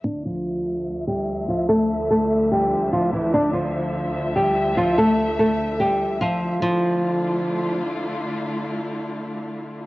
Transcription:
<<
  \new Staff \with { instrumentName = "Nylon-string guitar" } { \time 4/4 \key d \minor \tempo 4 = 146 <d' d''>8 <f f'>2 <g g'>4 <f f'>8 | <a a'>4 <a a'>4 <g g'>4 <f f'>8 <e e'>8 | <d' d''>8 <f f'>2 <g g'>4 <f f'>8 | <a a'>4 <a a'>4 <g g'>4 <f f'>4 |
f2. r4 | r1 | }
  \new Staff \with { instrumentName = "String section" } { \time 4/4 \key d \minor << { e''1~ | e''1 | e''1~ | e''1 |
<d a e' f'>1~ | <d a e' f'>1 | } \\ { <d, d f>1~ | <d, d f>1~ | <d, d f>1~ | <d, d f>1 |
r1 | r1 | } >> }
>>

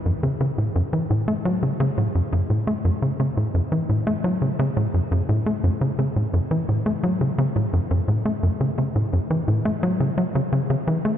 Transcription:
\new Staff \with { instrumentName = "Analog synth bass" } { \clef bass \time 4/4 \key fis \minor \tempo 4 = 86 fis,16 cis16 cis16 a,16 fis,16 e16 a,16 a16 fis16 cis16 cis16 a,16 fis,16 fis,16 a,16 a16 | fis,16 cis16 cis16 a,16 fis,16 e16 a,16 a16 fis16 cis16 cis16 a,16 fis,16 fis,16 a,16 a16 | fis,16 cis16 cis16 a,16 fis,16 e16 a,16 a16 fis16 cis16 cis16 a,16 fis,16 fis,16 a,16 a16 | fis,16 cis16 cis16 a,16 fis,16 e16 a,16 a16 fis16 cis16 fis16 cis16 cis16 cis16 e16 a16 | }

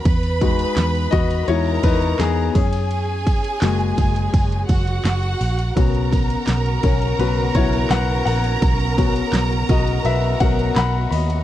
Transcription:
<<
  \new Staff \with { instrumentName = "Violin section" } { \time 4/4 \key b \major \tempo 4 = 84 <b' b''>2 <ais' ais''>4. <gis' gis''>8~ | <gis' gis''>2~ <gis' gis''>8 <fis' fis''>4. | <ais' ais''>1~ | <ais' ais''>1 | }
  \new Staff \with { instrumentName = "Grand piano" } { \time 4/4 \key b \major << { r4. <fis' dis''>8 <e' cis''>8 <dis' b'>8 <b gis'>8 <cis' gis'>8~ | <cis' gis'>8 r2. r8 | r4. <cis' ais'>8 b'8 <e' cis''>8 <b' fis''>8 <ais' fis''>8 | r4. <fis' dis''>8 <b' e''>8 <ais' fis''>8 <fis'' b''>8 <dis'' b''>8 | } \\ { r8 <gis dis' fis'>4. <gis dis' fis'>8 r4. | r4 <gis ais fis'>8 r2 r8 | <b cis' fis'>4. r8 <b cis' fis'>8 r4. | r8 <b cis' fis'>2 <b cis' fis'>8 r4 | } >> }
  \new Staff \with { instrumentName = "String section" } { \time 4/4 \key b \major << { r1 | r1 | fis'1 | fis'1 | } \\ { r1 | r1 | <cis b>1~ | <cis b>1 | } >> }
  \new Staff \with { instrumentName = "Picked electric bass" } { \clef bass \time 4/4 \key b \major e,4 e,8 e,8 e,8 e,8 e,8 fis,8~ | fis,4 fis,,8 fis,,8 fis,,8 fis,,8 fis,,8 ais,,8 | b,,4 b,,8 b,,8 b,,8 b,,8 b,,8 ais,,8 | b,,4 b,,8 b,,8 b,,8 b,,8 b,,8 dis,8 | }
  \new DrumStaff \with { instrumentName = "Drums" } \drummode { \time 4/4 <bd cymr>16 cymr16 <bd cymr>16 cymr16 <hc cymr sn>16 cymr16 <bd cymr>16 cymr16 cymr8 <bd cymr>16 cymr16 <hc cymr sn>8 <hho bd cymr>16 cymr16 | cymr8 <bd cymr>16 cymr16 <hc cymr sn>16 cymr16 <bd cymr>16 cymr16 <bd cymr>16 cymr16 <bd cymr>16 cymr16 <hc cymr sn>16 cymr16 <hho cymr>16 cymr16 | <bd cymr>16 cymr16 <bd cymr>16 cymr16 <hc cymr sn>16 cymr16 <bd cymr>16 cymr16 cymr8 <bd cymr>16 cymr16 <hc cymr sn>8 <hho cymr>16 cymr16 | <bd cymr>16 cymr16 <bd cymr>16 cymr16 <hc cymr sn>16 cymr16 <bd cymr>16 cymr16 cymr8 <bd cymr>16 cymr16 <hc cymr sn>8 <hho cymr>16 cymr16 | }
>>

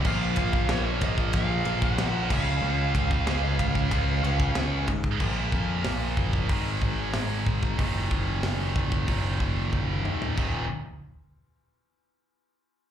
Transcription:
<<
  \new Staff \with { instrumentName = "Lead electric guitar" } { \time 4/4 \key ees \minor \tempo 4 = 93 f''4 des''8 ees''8 f''8. ges''8. f''8~ | f''2. r4 | r1 | r1 |
r1 | }
  \new Staff \with { instrumentName = "Distorted electric guitar" } { \clef bass \time 4/4 \key ees \minor <bes, f bes>2~ <bes, f bes>8 <bes, f bes>8 <bes, f bes>8 <des aes des'>8~ | <des aes des'>2 <des aes des'>8 <des aes des'>4 r8 | <bes, f bes>2 <aes, ees aes>2 | <ees, bes, ees>1 |
<ees, bes, ees>8 r2. r8 | }
  \new Staff \with { instrumentName = "Distorted electric guitar" } { \clef bass \time 4/4 \key ees \minor <bes, f bes>4. <bes, f bes>2 <des aes des'>8~ | <des aes des'>4 <des aes des'>2~ <des aes des'>8 r8 | <bes, f bes>2 <aes, ees aes>2 | <ees, bes, ees>2 <ees, bes, ees>2 |
<ees, bes, ees>8 r2. r8 | }
  \new Staff \with { instrumentName = "Picked electric bass" } { \clef bass \time 4/4 \key ees \minor bes,,8 bes,,8 bes,,8 bes,,8 bes,,8 bes,,8 bes,,8 des,8 | des,8 des,8 des,8 des,8 des,8 des,8 des,8 aes,8 | bes,,8 f,8 bes,,8 ges,,8 aes,,8 aes,,8 aes,,8 aes,,8 | ges,,4 ges,,8 ges,,8 ges,,4 ges,,8 ees,8 |
ees,,8 r2. r8 | }
  \new DrumStaff \with { instrumentName = "Drums" } \drummode { \time 4/4 <cymc bd>8 <bd cymr>16 bd16 <cymr sn>8 <bd cymr>16 bd16 <bd cymr>8 cymr16 bd16 <cymr sn>8 <cymc bd>8 | r8 <bd cymr>16 bd16 <cymr sn>8 <bd cymr>16 bd16 <bd cymr>8 cymr16 bd16 <cymr sn>8 <bd cymr>16 bd16 | <cymc bd>8 bd8 <hho sn>8 bd16 bd16 <hho bd>8 bd8 <hho sn>8 bd16 bd16 | <hho bd>8 bd8 <hho sn>8 bd16 bd16 <hho bd>8 bd8 bd8 toml16 tomfh16 |
<cymc bd>4 r4 r4 r4 | }
>>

